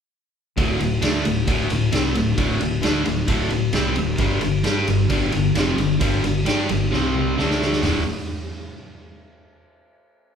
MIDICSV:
0, 0, Header, 1, 4, 480
1, 0, Start_track
1, 0, Key_signature, -1, "minor"
1, 0, Tempo, 450113
1, 616, Time_signature, 4, 2, 24, 8
1, 3498, Tempo, 455235
1, 10952, End_track
2, 0, Start_track
2, 0, Title_t, "Distorted electric guitar"
2, 0, Program_c, 0, 30
2, 604, Note_on_c, 0, 38, 92
2, 614, Note_on_c, 0, 45, 94
2, 621, Note_on_c, 0, 50, 104
2, 831, Note_off_c, 0, 38, 0
2, 835, Note_off_c, 0, 45, 0
2, 844, Note_on_c, 0, 38, 59
2, 847, Note_on_c, 0, 45, 63
2, 851, Note_off_c, 0, 50, 0
2, 1041, Note_off_c, 0, 38, 0
2, 1043, Note_off_c, 0, 45, 0
2, 1083, Note_on_c, 0, 50, 96
2, 1089, Note_on_c, 0, 57, 94
2, 1095, Note_on_c, 0, 62, 92
2, 1321, Note_off_c, 0, 50, 0
2, 1324, Note_off_c, 0, 57, 0
2, 1327, Note_off_c, 0, 62, 0
2, 1329, Note_on_c, 0, 38, 65
2, 1329, Note_on_c, 0, 45, 77
2, 1523, Note_off_c, 0, 38, 0
2, 1524, Note_off_c, 0, 45, 0
2, 1569, Note_on_c, 0, 38, 91
2, 1578, Note_on_c, 0, 45, 92
2, 1585, Note_on_c, 0, 50, 86
2, 1793, Note_off_c, 0, 38, 0
2, 1800, Note_off_c, 0, 45, 0
2, 1806, Note_on_c, 0, 38, 64
2, 1812, Note_off_c, 0, 50, 0
2, 1812, Note_on_c, 0, 45, 73
2, 2002, Note_off_c, 0, 38, 0
2, 2005, Note_off_c, 0, 45, 0
2, 2047, Note_on_c, 0, 48, 96
2, 2055, Note_on_c, 0, 55, 100
2, 2064, Note_on_c, 0, 60, 104
2, 2283, Note_off_c, 0, 48, 0
2, 2287, Note_off_c, 0, 55, 0
2, 2292, Note_off_c, 0, 60, 0
2, 2292, Note_on_c, 0, 38, 60
2, 2296, Note_on_c, 0, 45, 62
2, 2485, Note_off_c, 0, 38, 0
2, 2487, Note_off_c, 0, 45, 0
2, 2525, Note_on_c, 0, 38, 95
2, 2534, Note_on_c, 0, 45, 93
2, 2540, Note_on_c, 0, 50, 105
2, 2755, Note_off_c, 0, 38, 0
2, 2760, Note_off_c, 0, 45, 0
2, 2768, Note_on_c, 0, 38, 65
2, 2771, Note_off_c, 0, 50, 0
2, 2772, Note_on_c, 0, 45, 68
2, 2964, Note_off_c, 0, 38, 0
2, 2966, Note_off_c, 0, 45, 0
2, 3006, Note_on_c, 0, 50, 93
2, 3012, Note_on_c, 0, 57, 97
2, 3022, Note_on_c, 0, 62, 95
2, 3245, Note_off_c, 0, 50, 0
2, 3247, Note_on_c, 0, 38, 70
2, 3248, Note_off_c, 0, 57, 0
2, 3250, Note_on_c, 0, 45, 79
2, 3253, Note_off_c, 0, 62, 0
2, 3445, Note_off_c, 0, 38, 0
2, 3447, Note_off_c, 0, 45, 0
2, 3483, Note_on_c, 0, 38, 84
2, 3491, Note_on_c, 0, 45, 91
2, 3496, Note_on_c, 0, 50, 105
2, 3722, Note_off_c, 0, 38, 0
2, 3726, Note_off_c, 0, 45, 0
2, 3729, Note_off_c, 0, 50, 0
2, 3737, Note_on_c, 0, 38, 64
2, 3739, Note_on_c, 0, 45, 72
2, 3928, Note_off_c, 0, 38, 0
2, 3929, Note_off_c, 0, 45, 0
2, 3973, Note_on_c, 0, 48, 99
2, 3979, Note_on_c, 0, 55, 94
2, 3987, Note_on_c, 0, 60, 116
2, 4207, Note_off_c, 0, 48, 0
2, 4210, Note_off_c, 0, 55, 0
2, 4214, Note_off_c, 0, 60, 0
2, 4220, Note_on_c, 0, 38, 66
2, 4221, Note_on_c, 0, 45, 73
2, 4409, Note_off_c, 0, 38, 0
2, 4410, Note_off_c, 0, 45, 0
2, 4456, Note_on_c, 0, 43, 89
2, 4466, Note_on_c, 0, 50, 97
2, 4469, Note_on_c, 0, 55, 113
2, 4688, Note_off_c, 0, 43, 0
2, 4688, Note_off_c, 0, 50, 0
2, 4694, Note_off_c, 0, 55, 0
2, 4700, Note_on_c, 0, 43, 60
2, 4701, Note_on_c, 0, 50, 68
2, 4889, Note_off_c, 0, 43, 0
2, 4889, Note_off_c, 0, 50, 0
2, 4933, Note_on_c, 0, 55, 82
2, 4939, Note_on_c, 0, 62, 88
2, 4949, Note_on_c, 0, 67, 101
2, 5166, Note_off_c, 0, 55, 0
2, 5169, Note_off_c, 0, 62, 0
2, 5173, Note_on_c, 0, 43, 65
2, 5175, Note_off_c, 0, 67, 0
2, 5179, Note_on_c, 0, 50, 70
2, 5366, Note_off_c, 0, 43, 0
2, 5369, Note_off_c, 0, 50, 0
2, 5412, Note_on_c, 0, 43, 83
2, 5418, Note_on_c, 0, 50, 99
2, 5424, Note_on_c, 0, 55, 104
2, 5639, Note_off_c, 0, 43, 0
2, 5650, Note_off_c, 0, 50, 0
2, 5652, Note_off_c, 0, 55, 0
2, 5652, Note_on_c, 0, 43, 71
2, 5662, Note_on_c, 0, 50, 76
2, 5846, Note_off_c, 0, 43, 0
2, 5851, Note_off_c, 0, 50, 0
2, 5894, Note_on_c, 0, 41, 100
2, 5905, Note_on_c, 0, 48, 91
2, 5909, Note_on_c, 0, 53, 99
2, 6128, Note_off_c, 0, 41, 0
2, 6133, Note_off_c, 0, 48, 0
2, 6134, Note_on_c, 0, 43, 56
2, 6135, Note_off_c, 0, 53, 0
2, 6139, Note_on_c, 0, 50, 66
2, 6327, Note_off_c, 0, 43, 0
2, 6330, Note_off_c, 0, 50, 0
2, 6369, Note_on_c, 0, 43, 85
2, 6371, Note_on_c, 0, 50, 94
2, 6383, Note_on_c, 0, 55, 103
2, 6600, Note_off_c, 0, 43, 0
2, 6605, Note_off_c, 0, 50, 0
2, 6612, Note_on_c, 0, 43, 67
2, 6613, Note_off_c, 0, 55, 0
2, 6617, Note_on_c, 0, 50, 66
2, 6807, Note_off_c, 0, 43, 0
2, 6810, Note_off_c, 0, 50, 0
2, 6848, Note_on_c, 0, 55, 98
2, 6858, Note_on_c, 0, 62, 91
2, 6861, Note_on_c, 0, 67, 100
2, 7087, Note_off_c, 0, 55, 0
2, 7092, Note_off_c, 0, 62, 0
2, 7093, Note_off_c, 0, 67, 0
2, 7095, Note_on_c, 0, 43, 67
2, 7100, Note_on_c, 0, 50, 64
2, 7289, Note_off_c, 0, 43, 0
2, 7292, Note_off_c, 0, 50, 0
2, 7326, Note_on_c, 0, 48, 81
2, 7334, Note_on_c, 0, 55, 91
2, 7339, Note_on_c, 0, 60, 88
2, 7806, Note_off_c, 0, 48, 0
2, 7807, Note_off_c, 0, 55, 0
2, 7811, Note_on_c, 0, 50, 91
2, 7813, Note_off_c, 0, 60, 0
2, 7819, Note_on_c, 0, 57, 87
2, 7831, Note_on_c, 0, 62, 101
2, 8288, Note_on_c, 0, 38, 83
2, 8290, Note_off_c, 0, 50, 0
2, 8294, Note_off_c, 0, 57, 0
2, 8296, Note_on_c, 0, 45, 96
2, 8299, Note_off_c, 0, 62, 0
2, 8305, Note_on_c, 0, 50, 110
2, 8487, Note_off_c, 0, 38, 0
2, 8491, Note_off_c, 0, 45, 0
2, 8495, Note_off_c, 0, 50, 0
2, 10952, End_track
3, 0, Start_track
3, 0, Title_t, "Fingered electric bass"
3, 0, Program_c, 1, 33
3, 616, Note_on_c, 1, 26, 95
3, 839, Note_off_c, 1, 26, 0
3, 862, Note_on_c, 1, 26, 80
3, 1081, Note_off_c, 1, 26, 0
3, 1096, Note_on_c, 1, 38, 100
3, 1318, Note_off_c, 1, 38, 0
3, 1339, Note_on_c, 1, 26, 78
3, 1559, Note_off_c, 1, 26, 0
3, 1575, Note_on_c, 1, 26, 85
3, 1798, Note_off_c, 1, 26, 0
3, 1826, Note_on_c, 1, 26, 79
3, 2043, Note_off_c, 1, 26, 0
3, 2057, Note_on_c, 1, 36, 97
3, 2279, Note_off_c, 1, 36, 0
3, 2306, Note_on_c, 1, 26, 72
3, 2524, Note_off_c, 1, 26, 0
3, 2539, Note_on_c, 1, 26, 97
3, 2760, Note_off_c, 1, 26, 0
3, 2791, Note_on_c, 1, 26, 78
3, 3007, Note_off_c, 1, 26, 0
3, 3034, Note_on_c, 1, 38, 98
3, 3250, Note_off_c, 1, 38, 0
3, 3261, Note_on_c, 1, 26, 73
3, 3483, Note_off_c, 1, 26, 0
3, 3499, Note_on_c, 1, 26, 83
3, 3721, Note_off_c, 1, 26, 0
3, 3743, Note_on_c, 1, 26, 74
3, 3963, Note_off_c, 1, 26, 0
3, 3979, Note_on_c, 1, 36, 97
3, 4200, Note_off_c, 1, 36, 0
3, 4221, Note_on_c, 1, 26, 79
3, 4441, Note_off_c, 1, 26, 0
3, 4457, Note_on_c, 1, 31, 97
3, 4679, Note_off_c, 1, 31, 0
3, 4701, Note_on_c, 1, 31, 75
3, 4921, Note_off_c, 1, 31, 0
3, 4938, Note_on_c, 1, 43, 100
3, 5160, Note_off_c, 1, 43, 0
3, 5183, Note_on_c, 1, 31, 76
3, 5402, Note_off_c, 1, 31, 0
3, 5417, Note_on_c, 1, 31, 88
3, 5639, Note_off_c, 1, 31, 0
3, 5666, Note_on_c, 1, 31, 79
3, 5884, Note_off_c, 1, 31, 0
3, 5898, Note_on_c, 1, 29, 94
3, 6120, Note_off_c, 1, 29, 0
3, 6132, Note_on_c, 1, 31, 77
3, 6358, Note_off_c, 1, 31, 0
3, 6380, Note_on_c, 1, 31, 90
3, 6602, Note_off_c, 1, 31, 0
3, 6624, Note_on_c, 1, 31, 78
3, 6844, Note_off_c, 1, 31, 0
3, 6858, Note_on_c, 1, 43, 99
3, 7081, Note_off_c, 1, 43, 0
3, 7101, Note_on_c, 1, 31, 79
3, 7323, Note_off_c, 1, 31, 0
3, 7348, Note_on_c, 1, 36, 92
3, 7791, Note_off_c, 1, 36, 0
3, 7824, Note_on_c, 1, 38, 88
3, 8270, Note_off_c, 1, 38, 0
3, 8303, Note_on_c, 1, 26, 91
3, 8525, Note_off_c, 1, 26, 0
3, 10952, End_track
4, 0, Start_track
4, 0, Title_t, "Drums"
4, 613, Note_on_c, 9, 51, 92
4, 614, Note_on_c, 9, 36, 103
4, 720, Note_off_c, 9, 51, 0
4, 721, Note_off_c, 9, 36, 0
4, 857, Note_on_c, 9, 51, 64
4, 964, Note_off_c, 9, 51, 0
4, 1090, Note_on_c, 9, 51, 102
4, 1107, Note_on_c, 9, 38, 107
4, 1196, Note_off_c, 9, 51, 0
4, 1213, Note_off_c, 9, 38, 0
4, 1333, Note_on_c, 9, 51, 79
4, 1440, Note_off_c, 9, 51, 0
4, 1573, Note_on_c, 9, 51, 100
4, 1574, Note_on_c, 9, 36, 103
4, 1680, Note_off_c, 9, 51, 0
4, 1681, Note_off_c, 9, 36, 0
4, 1814, Note_on_c, 9, 51, 71
4, 1921, Note_off_c, 9, 51, 0
4, 2052, Note_on_c, 9, 51, 92
4, 2069, Note_on_c, 9, 38, 106
4, 2159, Note_off_c, 9, 51, 0
4, 2176, Note_off_c, 9, 38, 0
4, 2295, Note_on_c, 9, 51, 69
4, 2402, Note_off_c, 9, 51, 0
4, 2535, Note_on_c, 9, 51, 89
4, 2536, Note_on_c, 9, 36, 107
4, 2642, Note_off_c, 9, 36, 0
4, 2642, Note_off_c, 9, 51, 0
4, 2778, Note_on_c, 9, 51, 69
4, 2885, Note_off_c, 9, 51, 0
4, 3016, Note_on_c, 9, 51, 89
4, 3033, Note_on_c, 9, 38, 111
4, 3123, Note_off_c, 9, 51, 0
4, 3140, Note_off_c, 9, 38, 0
4, 3257, Note_on_c, 9, 51, 71
4, 3274, Note_on_c, 9, 38, 35
4, 3364, Note_off_c, 9, 51, 0
4, 3381, Note_off_c, 9, 38, 0
4, 3496, Note_on_c, 9, 51, 94
4, 3498, Note_on_c, 9, 36, 100
4, 3601, Note_off_c, 9, 51, 0
4, 3604, Note_off_c, 9, 36, 0
4, 3733, Note_on_c, 9, 51, 59
4, 3839, Note_off_c, 9, 51, 0
4, 3968, Note_on_c, 9, 51, 84
4, 3985, Note_on_c, 9, 38, 97
4, 4074, Note_off_c, 9, 51, 0
4, 4091, Note_off_c, 9, 38, 0
4, 4211, Note_on_c, 9, 51, 66
4, 4316, Note_off_c, 9, 51, 0
4, 4449, Note_on_c, 9, 51, 87
4, 4454, Note_on_c, 9, 36, 104
4, 4554, Note_off_c, 9, 51, 0
4, 4559, Note_off_c, 9, 36, 0
4, 4688, Note_on_c, 9, 51, 67
4, 4794, Note_off_c, 9, 51, 0
4, 4931, Note_on_c, 9, 51, 91
4, 4948, Note_on_c, 9, 38, 105
4, 5036, Note_off_c, 9, 51, 0
4, 5053, Note_off_c, 9, 38, 0
4, 5180, Note_on_c, 9, 51, 76
4, 5285, Note_off_c, 9, 51, 0
4, 5412, Note_on_c, 9, 51, 95
4, 5416, Note_on_c, 9, 36, 100
4, 5518, Note_off_c, 9, 51, 0
4, 5522, Note_off_c, 9, 36, 0
4, 5651, Note_on_c, 9, 51, 67
4, 5757, Note_off_c, 9, 51, 0
4, 5894, Note_on_c, 9, 51, 87
4, 5911, Note_on_c, 9, 38, 99
4, 5999, Note_off_c, 9, 51, 0
4, 6016, Note_off_c, 9, 38, 0
4, 6134, Note_on_c, 9, 51, 71
4, 6240, Note_off_c, 9, 51, 0
4, 6373, Note_on_c, 9, 51, 103
4, 6377, Note_on_c, 9, 36, 104
4, 6479, Note_off_c, 9, 51, 0
4, 6482, Note_off_c, 9, 36, 0
4, 6616, Note_on_c, 9, 51, 69
4, 6722, Note_off_c, 9, 51, 0
4, 6851, Note_on_c, 9, 51, 93
4, 6868, Note_on_c, 9, 38, 108
4, 6957, Note_off_c, 9, 51, 0
4, 6974, Note_off_c, 9, 38, 0
4, 7095, Note_on_c, 9, 51, 77
4, 7200, Note_off_c, 9, 51, 0
4, 7353, Note_on_c, 9, 38, 61
4, 7458, Note_off_c, 9, 38, 0
4, 7577, Note_on_c, 9, 47, 68
4, 7683, Note_off_c, 9, 47, 0
4, 7833, Note_on_c, 9, 38, 75
4, 7939, Note_off_c, 9, 38, 0
4, 7955, Note_on_c, 9, 38, 79
4, 8060, Note_off_c, 9, 38, 0
4, 8075, Note_on_c, 9, 38, 92
4, 8181, Note_off_c, 9, 38, 0
4, 8186, Note_on_c, 9, 38, 92
4, 8292, Note_off_c, 9, 38, 0
4, 8292, Note_on_c, 9, 43, 94
4, 8292, Note_on_c, 9, 46, 82
4, 8309, Note_on_c, 9, 38, 89
4, 8397, Note_off_c, 9, 43, 0
4, 8397, Note_off_c, 9, 46, 0
4, 8414, Note_off_c, 9, 38, 0
4, 10952, End_track
0, 0, End_of_file